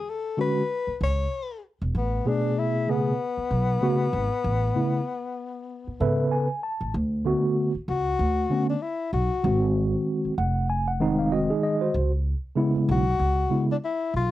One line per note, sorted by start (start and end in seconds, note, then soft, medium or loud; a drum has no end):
0.00 0.11 G#4 medium
0.10 0.40 A4 medium
0.37 0.61 D3 medium
0.37 0.61 G#3 medium
0.37 0.62 C#4 medium
0.37 0.62 F#4 medium
0.37 0.98 B4 loud
0.87 muted upright bass stroke soft
1.01 1.25 C#2 medium
1.01 1.61 C#5 loud
1.82 1.92 E1 medium
1.95 2.19 A1 medium
1.95 2.29 B3 medium
2.25 3.14 B2 medium
2.25 2.87 A3 medium
2.25 2.88 B3 medium
2.25 2.60 D4 medium
2.25 2.88 G#4 medium
2.59 2.92 E4 loud
2.88 3.11 C#3 medium
2.88 3.12 A3 medium
2.88 3.12 B3 medium
2.88 6.33 B3 loud
2.88 3.12 G#4 medium
3.37 muted upright bass stroke soft
3.51 3.75 B1 medium
3.81 4.05 C#3 medium
3.81 4.05 A3 medium
3.81 4.06 B3 medium
3.81 4.06 F#4 loud
4.13 4.27 G#1 medium
4.44 4.69 A1 medium
4.75 4.99 C#3 medium
4.75 4.99 A3 medium
4.75 4.99 B3 medium
4.75 4.99 E4 medium
5.87 muted upright bass stroke soft
6.00 6.25 G#2 medium
6.00 6.46 C#3 medium
6.00 6.47 B3 medium
6.00 6.46 A4 medium
6.00 6.47 B4 medium
6.00 6.30 E5 medium
6.32 6.61 G#5 medium
6.63 6.92 A5 medium
6.81 6.91 A1 medium
6.94 7.33 D2 medium
7.25 7.71 D3 medium
7.25 7.71 A3 medium
7.25 7.72 B3 medium
7.25 7.72 F#4 medium
7.75 muted upright bass stroke soft
7.88 8.12 C#2 medium
7.88 8.66 F#4 loud
8.19 8.44 D2 medium
8.50 8.74 D3 medium
8.50 8.74 A3 medium
8.50 8.74 B3 medium
8.50 8.74 C#4 medium
8.70 8.84 D4 medium
8.82 9.13 E4 medium
9.13 9.27 B1 medium
9.13 9.72 F#4 loud
9.43 9.93 G#1 loud
9.43 10.32 D#3 medium
9.43 10.33 G#3 medium
9.43 10.33 C4 medium
9.43 10.33 F#4 medium
10.25 muted upright bass stroke soft
10.38 11.46 F1 medium
10.38 10.67 F#5 medium
10.70 10.86 G#5 medium
10.88 11.17 F#5 medium
11.00 11.89 D#3 medium
11.00 11.89 G#3 medium
11.00 11.31 C4 medium
11.00 11.33 D#4 loud
11.19 11.31 F5 medium
11.32 11.49 C4 medium
11.32 11.49 F#4 medium
11.32 11.61 D#5 medium
11.50 11.80 D#4 medium
11.50 11.80 G#4 medium
11.63 11.92 D#5 medium
11.81 12.11 F#4 medium
11.81 12.11 C5 medium
11.94 12.33 C#2 medium
12.55 13.02 C#3 medium
12.55 13.02 G#3 medium
12.55 13.03 B3 medium
12.55 13.03 E4 medium
12.75 muted upright bass stroke soft
12.88 13.13 B1 medium
12.88 13.66 F#4 loud
13.20 13.44 C#2 medium
13.50 13.74 C#3 medium
13.50 13.74 G#3 medium
13.50 13.74 B3 medium
13.50 13.74 E4 medium
13.72 13.77 D4 medium
13.84 14.12 E4 medium
14.14 14.27 B1 medium
14.14 14.31 F4 medium